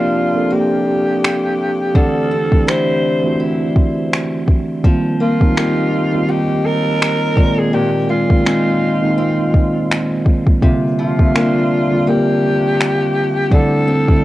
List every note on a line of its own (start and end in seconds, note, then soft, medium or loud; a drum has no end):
0.00 1.95 C3 medium
0.00 0.34 F3 medium
0.00 2.03 F3 medium
0.00 0.35 A#3 medium
0.00 0.49 A#3 medium
0.00 0.35 C4 medium
0.00 0.36 D4 medium
0.00 2.34 D4 medium
0.00 0.54 F4 medium
0.00 1.96 G4 medium
0.34 1.33 F3 medium
0.34 1.33 A#3 medium
0.34 1.33 C4 medium
0.34 1.34 D4 medium
0.34 1.34 A4 medium
0.50 2.03 A#3 medium
0.50 1.98 G4 medium
1.24 finger snap loud
1.94 4.84 D3 medium
1.94 2.32 E3 medium
1.94 2.32 A3 medium
1.94 2.33 C4 medium
1.94 2.33 D4 medium
1.94 2.33 G4 medium
1.94 2.70 A4 loud
1.94 kick loud
2.31 2.67 C4 medium
2.51 2.99 E3 medium
2.51 3.00 A3 medium
2.51 3.00 C4 medium
2.51 3.00 D4 medium
2.51 3.01 E4 medium
2.51 kick medium
2.67 5.20 C4 medium
2.67 3.39 E4 medium
2.67 5.57 G4 medium
2.67 3.40 C5 medium
2.67 finger snap loud
3.24 4.22 E3 medium
3.24 4.22 A3 medium
3.24 4.23 C4 medium
3.24 4.23 D4 medium
3.24 4.23 F#4 medium
3.40 4.93 E4 medium
3.76 kick medium
4.13 finger snap loud
4.48 kick medium
4.83 5.21 D#3 medium
4.83 8.09 F3 medium
4.83 5.21 G3 medium
4.83 5.22 A#3 medium
4.83 5.22 C4 medium
4.83 5.22 F4 medium
4.83 kick loud
5.20 5.56 A#3 medium
5.20 6.31 F4 medium
5.40 5.88 D#3 medium
5.40 5.89 G3 medium
5.40 5.89 A#3 medium
5.40 5.89 C4 medium
5.40 5.90 D#4 medium
5.40 kick medium
5.56 8.12 A#3 medium
5.56 6.28 D#4 medium
5.56 7.46 G4 medium
5.56 finger snap medium
6.12 7.11 D#3 medium
6.12 7.11 G3 medium
6.12 7.12 A#3 medium
6.12 7.12 C4 medium
6.12 7.12 F4 medium
6.29 8.46 D#4 medium
6.29 6.67 G4 loud
6.65 7.60 A#4 loud
7.02 finger snap loud
7.36 7.72 A#2 medium
7.36 8.09 D#3 medium
7.36 8.09 G#3 medium
7.36 8.10 A#3 medium
7.36 8.10 C4 medium
7.36 8.10 F4 medium
7.36 kick loud
7.59 7.73 G#4 medium
7.73 10.62 A#2 medium
7.73 8.07 G4 loud
8.09 8.44 G#3 medium
8.09 10.23 F4 medium
8.29 8.77 D#3 medium
8.29 8.78 G#3 medium
8.29 8.78 A#3 medium
8.29 8.78 C4 medium
8.29 8.79 F4 medium
8.29 kick medium
8.45 10.71 G#3 medium
8.45 9.17 C4 medium
8.45 10.71 D#4 medium
8.45 finger snap medium
9.02 10.00 D#3 medium
9.02 10.00 G#3 medium
9.02 10.01 A#3 medium
9.02 10.01 C4 medium
9.02 9.09 D#4 medium
9.11 10.05 F4 medium
9.18 11.35 C4 medium
9.54 kick medium
9.91 finger snap loud
10.26 kick medium
10.47 kick loud
10.61 13.51 C3 medium
10.61 10.99 D3 medium
10.61 11.00 G3 medium
10.61 11.00 A#3 medium
10.61 11.00 C4 medium
10.61 11.01 F4 medium
10.61 kick loud
10.99 11.34 F3 medium
10.99 12.10 F4 medium
11.18 11.67 D3 medium
11.18 11.67 G3 medium
11.18 11.67 A#3 medium
11.18 11.68 C4 medium
11.18 11.68 E5 medium
11.18 kick medium
11.35 13.60 F3 medium
11.35 12.06 A#3 medium
11.35 13.91 D4 medium
11.35 finger snap medium
11.91 12.89 D3 medium
11.91 12.90 G3 medium
11.91 12.90 A#3 medium
11.91 12.90 C4 medium
11.91 12.91 F4 medium
12.07 13.60 A#3 medium
12.07 13.55 G4 medium
12.81 finger snap loud
13.51 13.88 D3 medium
13.51 14.24 D3 medium
13.51 13.89 G3 medium
13.51 13.89 A3 medium
13.51 13.90 C4 medium
13.51 13.90 E4 medium
13.51 14.24 A4 loud
13.51 kick loud
13.88 14.24 C4 medium
14.08 14.24 D3 medium
14.08 14.24 G3 medium
14.08 14.24 A3 medium
14.08 14.24 C4 medium
14.08 14.24 E4 medium
14.08 kick medium